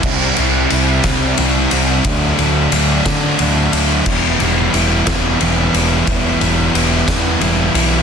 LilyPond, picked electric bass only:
\new Staff \with { instrumentName = "Picked electric bass" } { \clef bass \time 6/8 \key e \minor \tempo 4. = 60 c,8 c,8 c,8 c,8 c,8 c,8 | d,8 d,8 d,8 d8 d,8 d,8 | e,,8 e,,8 e,,8 e,,8 e,,8 e,,8 | e,,8 e,,8 e,,8 e,8 e,,8 b,,8 | }